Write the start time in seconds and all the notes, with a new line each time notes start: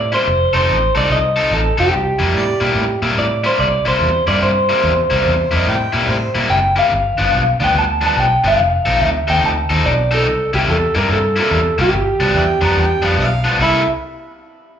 Already playing: A2 D5
0.12 C3 G3 A#3 E4 C5
0.27 F1
0.53 F1 F3 C4 D#4 A4 C5
0.70 A1
0.95 C2 F3 C4 D#4 A4 D5
1.10 C2 D#5
1.36 F3 C4 D#4 A4
1.51 A1 A4
1.78 F1 F3 C4 D#4 G4 A4
1.93 C2
2.19 F2 C3 G3 A#3 E4
2.34 A2 D5
2.60 A#2 C3 G3 A#3 E4 G4
2.75 A2
3.02 A#2 C3 G3 A#3 E4
3.18 A2 D5
3.44 C3 G3 A#3 E4 C5
3.59 C2 D5
3.85 C2 C3 G3 A#3 E4 C5
4.00 E2
4.27 G2 C3 G3 A#3 E4 D5
4.42 G2 C5
4.69 C3 G3 A#3 E4
4.84 E2
5.10 C2 C3 G3 A#3 E4 C5
5.26 E2
5.51 F2 C3 G3 A#3 E4
5.55 D#5
5.67 A2 G5
5.93 A#2 C3 G3 A#3 E4
6.08 A2 C5
6.35 A#2 C3 G3 A#3 E4
6.50 F#1 G5
6.76 C3 G3 A#3 E4 F5
6.92 G1
7.18 G1 G2 F3 B3 D4
7.34 B1
7.60 D2 G2 F3 B3 D4
7.64 G5
7.75 D2 A5
8.01 G2 F3 B3 D4
8.07 A5
8.17 B1 G5
8.44 G1 G2 F3 B3 D4 F5
8.60 F1
8.86 A#1 F3 C4 D#4 A4
9.01 D2 E5
9.28 D#2 F3 C4 D#4 A4 G5
9.43 D2 A5
9.69 D#2 F3 C4 D#4 A4
9.85 B1 D5
10.11 F3 C4 D#4 A4
10.27 C2
10.53 C2 C3 G3 A#3 E4 G4
10.68 E2 A4
10.95 G2 C3 G3 A#3 E4 A#4
11.10 G2 A4
11.36 C3 G3 A#3 E4
11.41 A4
11.51 E2
11.78 C2 C3 G3 A#3 E4 G4
11.93 G1
12.20 C2 G2 F3 B3 D4
12.35 E2 D5 E5 G5
12.61 F2 G2 F3 B3 D4 A#5
12.77 E2 G5
13.02 F2 G2 F3 B3 D4
13.07 F5
13.17 B1 F5
13.44 G2 F3 B3 D4
13.59 C2 C3 A#3 E4 A4 E5